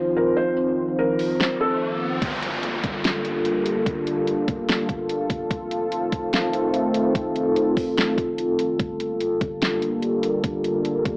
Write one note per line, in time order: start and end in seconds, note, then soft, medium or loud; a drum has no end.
0.00 2.19 D#3 medium
0.00 2.19 F3 medium
0.00 2.19 C4 medium
0.00 2.18 F4 medium
0.00 2.19 C5 medium
0.17 0.36 A#4 medium
0.37 0.56 C5 medium
0.57 riser medium
0.99 1.57 A#4 medium
1.19 open hi-hat medium
1.41 snare loud
1.61 2.18 A4 medium
2.22 2.81 G1 loud
2.22 5.47 D3 medium
2.22 5.47 G3 medium
2.22 5.47 A#3 medium
2.22 11.17 F4 medium
2.22 11.17 A4 medium
2.22 kick loud
2.22 closed hi-hat medium
2.22 downlifter medium
2.42 closed hi-hat medium
2.63 closed hi-hat medium
2.84 3.82 G1 loud
2.84 kick loud
2.84 closed hi-hat medium
3.04 snare loud
3.04 closed hi-hat medium
3.25 closed hi-hat medium
3.45 closed hi-hat medium
3.66 closed hi-hat medium
3.86 4.45 G1 loud
3.86 kick loud
3.86 closed hi-hat medium
4.07 closed hi-hat medium
4.27 closed hi-hat medium
4.48 4.68 G1 loud
4.48 kick loud
4.48 closed hi-hat medium
4.69 snare loud
4.69 closed hi-hat medium
4.89 5.28 G1 loud
4.89 kick medium
4.89 closed hi-hat medium
5.09 closed hi-hat medium
5.30 5.50 G1 loud
5.30 kick loud
5.30 closed hi-hat medium
5.51 6.10 F1 loud
5.51 8.76 D#3 medium
5.51 8.76 A3 medium
5.51 8.76 C4 medium
5.51 kick loud
5.51 closed hi-hat medium
5.71 closed hi-hat medium
5.92 closed hi-hat medium
6.12 7.11 F1 loud
6.12 kick loud
6.12 closed hi-hat medium
6.33 snare loud
6.33 closed hi-hat medium
6.53 closed hi-hat medium
6.74 closed hi-hat medium
6.94 closed hi-hat medium
7.15 7.74 F1 loud
7.15 kick loud
7.15 closed hi-hat medium
7.36 closed hi-hat medium
7.56 closed hi-hat medium
7.77 8.09 F1 loud
7.77 kick loud
7.77 open hi-hat medium
7.97 snare loud
7.97 closed hi-hat medium
8.08 8.17 D#1 medium
8.18 8.77 F1 loud
8.18 kick medium
8.18 closed hi-hat medium
8.38 closed hi-hat medium
8.59 closed hi-hat medium
8.79 9.39 G1 loud
8.79 11.17 D3 medium
8.79 11.17 G3 medium
8.79 11.17 A#3 medium
8.79 kick loud
8.79 closed hi-hat medium
9.00 closed hi-hat medium
9.21 closed hi-hat medium
9.41 10.40 G1 loud
9.41 kick loud
9.41 closed hi-hat medium
9.62 snare loud
9.62 closed hi-hat medium
9.82 closed hi-hat medium
10.03 closed hi-hat medium
10.23 closed hi-hat medium
10.44 11.03 G1 loud
10.44 kick loud
10.44 closed hi-hat medium
10.64 closed hi-hat medium
10.85 closed hi-hat medium
11.05 11.17 G1 loud
11.05 kick loud
11.05 closed hi-hat medium